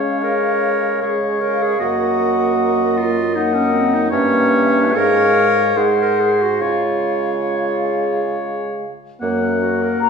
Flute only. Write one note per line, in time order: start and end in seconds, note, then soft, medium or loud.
0.00 0.99 F5 soft
1.03 1.83 F5 soft
1.82 3.04 F#5 soft
3.35 4.10 F#5 medium
4.12 4.97 E5 medium
4.95 5.79 F5 medium
5.78 6.62 F#5 medium
6.60 8.87 F5 soft
10.01 10.10 A#5 medium